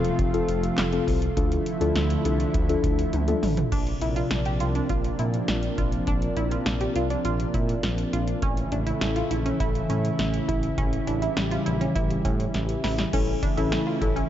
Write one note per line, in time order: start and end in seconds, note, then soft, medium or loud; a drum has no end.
0.00 0.10 E1 loud
0.00 1.34 C3 medium
0.00 1.34 F3 medium
0.00 1.34 A3 medium
0.00 0.12 C4 medium
0.00 0.12 F4 medium
0.00 1.34 F4 medium
0.00 0.12 A4 medium
0.05 closed hi-hat medium
0.19 0.40 F1 loud
0.19 kick loud
0.19 closed hi-hat medium
0.34 0.64 C4 medium
0.34 0.64 F4 medium
0.34 0.64 A4 loud
0.34 closed hi-hat medium
0.48 0.69 F1 loud
0.48 closed hi-hat medium
0.63 closed hi-hat medium
0.78 0.99 F1 loud
0.78 snare loud
0.78 clap loud
0.78 closed hi-hat medium
0.93 1.15 C4 medium
0.93 1.15 F4 medium
0.93 1.15 A4 medium
0.93 closed hi-hat soft
1.07 1.28 C2 medium
1.07 kick medium
1.07 open hi-hat medium
1.22 closed hi-hat medium
1.37 1.57 D2 loud
1.37 3.70 D3 medium
1.37 3.70 F3 medium
1.37 3.70 A3 medium
1.37 1.59 D4 medium
1.37 3.70 E4 medium
1.37 1.59 F4 medium
1.37 1.59 A4 medium
1.37 kick loud
1.37 closed hi-hat medium
1.52 closed hi-hat medium
1.66 closed hi-hat medium
1.81 1.91 D2 loud
1.81 2.03 D4 medium
1.81 2.03 F4 medium
1.81 2.03 A4 medium
1.81 closed hi-hat medium
1.96 2.16 D2 loud
1.96 snare loud
1.96 closed hi-hat medium
2.10 closed hi-hat medium
2.25 2.46 C2 loud
2.25 2.47 D4 medium
2.25 2.47 F4 medium
2.25 2.47 A4 medium
2.25 closed hi-hat medium
2.40 closed hi-hat medium
2.54 2.75 D2 loud
2.54 kick loud
2.54 closed hi-hat medium
2.69 2.99 D4 medium
2.69 2.99 F4 medium
2.69 2.99 A4 medium
2.69 closed hi-hat medium
2.84 3.04 D2 medium
2.84 kick loud
2.84 closed hi-hat medium
2.99 closed hi-hat medium
3.13 3.34 D2 loud
3.13 closed hi-hat medium
3.13 high tom medium
3.28 3.50 D4 medium
3.28 3.50 F4 medium
3.28 3.50 A4 medium
3.28 closed hi-hat medium
3.28 mid tom medium
3.43 3.63 A1 loud
3.43 mid tom loud
3.43 open hi-hat medium
3.57 closed hi-hat medium
3.57 floor tom loud
3.72 3.93 A#1 loud
3.72 8.39 C3 medium
3.72 8.39 F3 medium
3.72 8.39 A#3 medium
3.72 8.39 D4 medium
3.72 3.94 D4 medium
3.72 kick loud
3.72 closed hi-hat medium
3.72 crash medium
3.87 closed hi-hat medium
4.01 4.22 A#1 loud
4.01 4.12 E4 medium
4.01 closed hi-hat medium
4.16 4.38 F4 medium
4.16 closed hi-hat medium
4.31 4.62 A#1 loud
4.31 snare loud
4.31 closed hi-hat medium
4.45 4.56 G4 medium
4.45 closed hi-hat medium
4.60 4.81 C2 medium
4.60 4.71 F4 medium
4.60 closed hi-hat medium
4.75 4.86 D4 medium
4.75 closed hi-hat soft
4.89 5.10 A#1 loud
4.89 5.11 F4 medium
4.89 kick loud
4.89 closed hi-hat medium
5.04 closed hi-hat medium
5.19 5.40 A#2 medium
5.19 5.41 E4 medium
5.19 closed hi-hat medium
5.34 closed hi-hat medium
5.48 5.69 A#1 loud
5.48 snare loud
5.48 closed hi-hat medium
5.63 closed hi-hat soft
5.78 5.99 A#1 medium
5.78 5.99 F4 medium
5.78 kick medium
5.78 closed hi-hat medium
5.92 closed hi-hat medium
6.07 6.28 A#1 loud
6.07 6.29 D4 medium
6.07 kick loud
6.07 closed hi-hat medium
6.22 closed hi-hat medium
6.37 6.57 A#1 loud
6.37 6.48 E4 medium
6.37 closed hi-hat medium
6.51 6.73 F4 medium
6.51 closed hi-hat medium
6.66 6.87 A#1 loud
6.66 snare loud
6.66 closed hi-hat medium
6.81 6.92 G4 medium
6.81 closed hi-hat medium
6.95 7.16 C2 medium
6.95 7.06 F4 medium
6.95 closed hi-hat medium
7.10 7.21 D4 medium
7.10 closed hi-hat soft
7.25 7.45 A#1 loud
7.25 7.46 F4 medium
7.25 closed hi-hat medium
7.40 closed hi-hat medium
7.54 7.75 A#2 loud
7.54 7.76 E4 medium
7.54 kick medium
7.54 closed hi-hat medium
7.69 closed hi-hat medium
7.83 8.04 A#1 medium
7.83 snare loud
7.83 closed hi-hat medium
7.98 closed hi-hat soft
8.13 8.34 A#1 loud
8.13 8.35 F4 medium
8.13 closed hi-hat medium
8.28 closed hi-hat medium
8.42 8.63 A1 loud
8.42 13.09 C#3 medium
8.42 13.09 E3 medium
8.42 10.75 A3 medium
8.42 8.64 C#4 medium
8.42 13.09 E4 medium
8.42 kick loud
8.42 closed hi-hat medium
8.57 closed hi-hat medium
8.72 8.93 A1 loud
8.72 8.83 D4 medium
8.72 closed hi-hat medium
8.87 9.08 E4 medium
8.87 closed hi-hat medium
9.01 9.22 A1 loud
9.01 snare loud
9.01 closed hi-hat medium
9.16 9.27 F4 medium
9.16 closed hi-hat medium
9.31 9.51 A#1 medium
9.31 9.42 E4 medium
9.31 closed hi-hat medium
9.46 9.56 C#4 medium
9.46 closed hi-hat medium
9.60 9.81 A1 loud
9.60 9.82 E4 medium
9.60 kick loud
9.60 closed hi-hat medium
9.75 closed hi-hat medium
9.90 10.10 A2 loud
9.90 10.11 C#4 medium
9.90 closed hi-hat medium
10.05 closed hi-hat medium
10.19 10.40 A1 loud
10.19 snare loud
10.19 closed hi-hat medium
10.34 closed hi-hat soft
10.48 10.69 A1 loud
10.48 10.70 E4 medium
10.48 kick medium
10.48 closed hi-hat medium
10.63 closed hi-hat medium
10.78 10.99 A1 loud
10.78 13.11 G3 medium
10.78 10.99 C#4 loud
10.78 kick loud
10.78 closed hi-hat medium
10.93 closed hi-hat medium
11.07 11.28 A1 medium
11.07 11.18 D4 medium
11.07 closed hi-hat medium
11.22 11.44 E4 medium
11.22 closed hi-hat medium
11.37 11.57 A1 loud
11.37 snare loud
11.37 closed hi-hat medium
11.51 11.62 F4 medium
11.51 closed hi-hat medium
11.66 11.87 A#1 medium
11.66 11.77 E4 medium
11.66 closed hi-hat medium
11.81 11.92 C#4 medium
11.81 closed hi-hat soft
11.96 12.16 A1 loud
11.96 12.17 E4 medium
11.96 kick loud
11.96 closed hi-hat medium
12.11 closed hi-hat medium
12.25 12.46 A2 loud
12.25 12.46 C#4 medium
12.25 kick loud
12.25 closed hi-hat medium
12.40 closed hi-hat medium
12.54 12.75 A1 loud
12.54 snare medium
12.54 closed hi-hat medium
12.69 closed hi-hat soft
12.84 13.04 A1 loud
12.84 13.05 E4 medium
12.84 snare medium
12.84 open hi-hat medium
12.98 snare medium
12.98 closed hi-hat medium
13.13 13.34 A1 loud
13.13 14.29 C#3 medium
13.13 14.29 E3 medium
13.13 14.29 A3 medium
13.13 13.36 C#4 medium
13.13 13.35 C#4 medium
13.13 13.36 E4 medium
13.13 14.29 E4 medium
13.13 13.36 A4 medium
13.13 kick loud
13.13 closed hi-hat medium
13.13 crash loud
13.43 13.53 D4 medium
13.43 kick medium
13.43 closed hi-hat medium
13.57 13.78 A1 loud
13.57 13.80 C#4 medium
13.57 13.79 E4 medium
13.57 13.80 E4 medium
13.57 13.80 A4 medium
13.57 closed hi-hat medium
13.72 snare loud
13.72 closed hi-hat medium
13.87 13.97 F4 medium
14.01 14.22 A1 loud
14.01 14.17 C#4 medium
14.01 14.12 E4 medium
14.01 14.16 E4 medium
14.01 14.17 A4 medium
14.01 kick medium
14.01 closed hi-hat medium
14.16 14.27 C#4 medium
14.16 closed hi-hat soft